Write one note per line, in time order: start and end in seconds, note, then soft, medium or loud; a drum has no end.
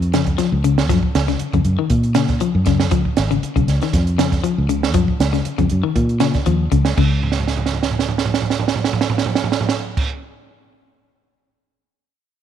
0.00 0.39 F2 medium
0.00 closed hi-hat soft
0.14 0.32 C#3 medium
0.14 snare medium
0.14 closed hi-hat medium
0.27 kick medium
0.27 closed hi-hat soft
0.38 0.57 F3 medium
0.38 snare soft
0.38 closed hi-hat medium
0.52 0.89 C#2 medium
0.64 0.82 C#3 medium
0.64 closed hi-hat medium
0.78 snare medium
0.89 1.00 F#2 loud
0.89 1.08 F3 loud
0.89 kick loud
0.89 snare soft
0.89 closed hi-hat medium
1.03 kick medium
1.15 1.35 C#2 medium
1.15 snare medium
1.15 closed hi-hat medium
1.28 1.46 C#3 medium
1.28 snare soft
1.28 closed hi-hat soft
1.40 muted fingered electric bass stroke soft
1.40 closed hi-hat medium
1.53 1.63 F2 medium
1.53 1.72 C#3 medium
1.53 kick medium
1.53 closed hi-hat soft
1.65 1.76 F#2 medium
1.65 closed hi-hat soft
1.79 1.97 D#3 medium
1.90 2.41 A#2 medium
1.90 kick medium
1.90 closed hi-hat medium
2.03 closed hi-hat soft
2.15 2.34 C#3 medium
2.15 snare medium
2.15 closed hi-hat medium
2.28 kick medium
2.28 snare soft
2.28 closed hi-hat soft
2.40 2.59 F3 medium
2.40 closed hi-hat medium
2.55 2.92 F#2 medium
2.66 2.85 C#3 medium
2.66 kick medium
2.66 snare soft
2.66 closed hi-hat medium
2.80 snare medium
2.91 3.03 C#2 loud
2.91 3.10 F3 medium
2.91 kick loud
2.91 closed hi-hat medium
3.05 kick medium
3.17 3.37 G#1 medium
3.17 snare medium
3.17 closed hi-hat medium
3.31 3.49 C#3 medium
3.31 closed hi-hat soft
3.43 muted fingered electric bass stroke soft
3.43 closed hi-hat medium
3.56 3.65 B1 medium
3.56 3.74 C#3 medium
3.56 kick medium
3.56 closed hi-hat soft
3.68 3.79 C#2 medium
3.68 snare soft
3.68 closed hi-hat medium
3.81 4.00 D#3 medium
3.81 snare soft
3.81 closed hi-hat soft
3.93 4.44 F2 medium
3.93 kick medium
3.93 snare soft
3.93 closed hi-hat medium
4.07 closed hi-hat soft
4.18 4.37 C#3 medium
4.18 snare medium
4.18 closed hi-hat medium
4.32 kick medium
4.32 snare soft
4.32 closed hi-hat soft
4.44 4.62 F3 medium
4.44 closed hi-hat medium
4.58 4.94 C#2 medium
4.69 4.87 C#3 medium
4.69 closed hi-hat medium
4.83 snare medium
4.94 5.05 F#2 medium
4.94 5.12 F3 medium
4.94 kick medium
4.94 closed hi-hat medium
5.08 kick medium
5.20 5.40 C#2 medium
5.20 snare medium
5.20 closed hi-hat medium
5.33 5.51 C#3 medium
5.33 snare soft
5.33 closed hi-hat soft
5.45 muted fingered electric bass stroke soft
5.45 closed hi-hat medium
5.58 5.68 F2 medium
5.58 5.77 C#3 medium
5.58 kick medium
5.58 closed hi-hat soft
5.70 5.82 F#2 medium
5.70 closed hi-hat soft
5.83 6.02 D#3 medium
5.96 6.36 A#2 medium
5.96 kick medium
5.96 closed hi-hat medium
6.09 closed hi-hat soft
6.20 6.39 C#3 medium
6.20 snare medium
6.20 closed hi-hat medium
6.34 kick medium
6.34 snare soft
6.34 closed hi-hat soft
6.46 6.69 D#2 medium
6.46 6.64 F3 medium
6.46 closed hi-hat medium
6.72 6.95 C#2 medium
6.72 6.90 C#3 medium
6.72 kick medium
6.72 closed hi-hat medium
6.85 snare medium
6.97 10.04 C#2 medium
6.97 8.84 C#3 medium
6.97 kick medium
6.97 crash medium
7.23 floor tom soft
7.32 snare soft
7.40 floor tom soft
7.47 snare soft
7.57 floor tom soft
7.66 snare soft
7.73 floor tom soft
7.83 snare soft
7.91 floor tom soft
7.99 snare medium
8.09 floor tom soft
8.18 snare medium
8.25 floor tom medium
8.34 snare medium
8.42 floor tom medium
8.50 snare medium
8.59 floor tom medium
8.68 snare medium
8.76 floor tom medium
8.84 snare medium
8.93 floor tom medium
9.01 snare medium
9.10 floor tom medium
9.18 snare medium
9.26 floor tom medium
9.35 snare medium
9.44 floor tom medium
9.52 snare medium
9.61 floor tom medium
9.69 snare medium
9.97 kick medium
9.97 crash medium